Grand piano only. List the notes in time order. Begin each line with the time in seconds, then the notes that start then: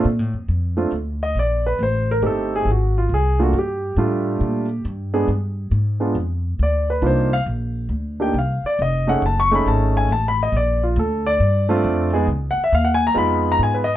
0.77 A3 C4 D4 F4
1.23 D#5
1.39 D5
1.66 B4
1.83 C5
2.11 A#4
2.22 A3 C4 D#4 G4
2.26 A4
2.56 G#4
2.71 F#4
2.98 F4
3.14 G#4
3.39 A3 A#3 D4 F4 F#4
3.59 G4
3.98 G3 A3 D4 F4
5.14 G#3 B3 D4 G#4
6.00 G#3 B3 D4 F4
6.63 D5
6.90 B4
7.02 A#3 D4 D#4 F4
7.06 C5
7.33 F5
8.20 A#3 D4 D#4 G4 G5
8.38 F5
8.66 D5
8.82 D#5
9.07 A3 C#4 D#4 G#4 F#5
9.26 A5
9.40 C#6
9.51 A3 C#4 D#4 G#4 B5
9.68 A5
9.97 G#5
10.12 A5
10.28 B5
10.43 D#5
10.57 D5
10.83 F4
10.99 A4
11.27 D5
11.69 A3 C4 D4 F4
12.13 G#3 B3 D#4 G#4
12.51 F#5
12.64 E5
12.75 F5
12.84 F#5
12.94 G#5
13.07 A#5
13.14 G#3 B3 D#4 F4 B5
13.52 A#5
13.63 G#5
13.74 B4
13.84 D#5